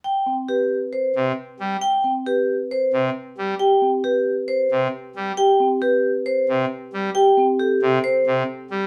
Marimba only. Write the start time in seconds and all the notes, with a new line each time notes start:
0.26 C4
0.49 B4
2.04 C4
2.26 B4
3.60 G4
3.82 C4
4.04 B4
5.38 G4
5.60 C4
5.82 B4
7.15 G4
7.37 C4
7.60 A4